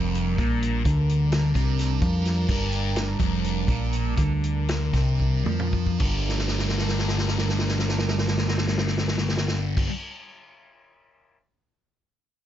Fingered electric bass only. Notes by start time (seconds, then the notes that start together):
Already playing: F1
0.39 A#1
0.85 D2
1.55 C2
2.02 F2
2.49 G1
3.20 F1
3.68 A#1
4.18 D2
4.94 C2
5.46 F2
6.01 G1